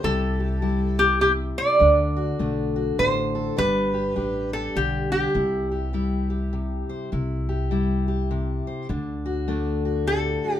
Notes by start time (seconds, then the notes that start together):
0.03 C2 C3 G3 E4 G4 A4
0.40 G4
0.62 G3 E4
0.99 E4 G4
1.21 C3 G4
1.58 C5 D5
1.79 D2 D3 D4
2.17 F#4
2.39 B1 A3 D4
2.76 F#4
2.98 A1 A2 C5
3.35 A4
3.57 G1 G3 D4 G4 B4
3.94 G4
4.16 A1 D4 G4
4.53 G4 A4
4.75 B1 D3 G4
5.12 D4 G4
5.34 C2 C3 E4
5.71 G4
5.93 G3 E4
6.30 G4
6.53 C3
6.89 C5
7.12 C2 C3 E4
7.49 G4
7.71 G3 E4
8.08 G4
8.31 C3
8.67 C5
8.89 D2 D3 D4
9.26 F#4
9.48 A3 D4
9.85 F#4
10.07 A2 A4
10.44 F#4
10.54 G4